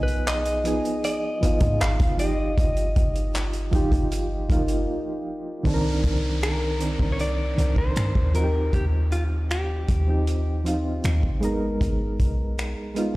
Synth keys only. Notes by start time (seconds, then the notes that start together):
Already playing: F3 B3 D#4 G#4
0.64 F3 B3 D#4 G#4
1.41 F3 B3 D#4 F4
2.17 F3 D#4 F4 G4
3.71 F3 D#4 F4 G4
4.48 F3 A#3 D#4 F4
5.63 D#3 C4 D4 A4
5.74 A#4
6.79 D#3 C4 D4 A#4
6.98 D#3 C4 D4 A#4
7.56 D#3 C4 D4 A#4
8.33 F3 C4 D#4 F#4
8.44 G4
10.06 F3 C4 D#4 G4
10.64 F3 C4 D#4 F4
11.41 G#3 B3 D#4 A#4
12.95 G#3 B3 D#4 F4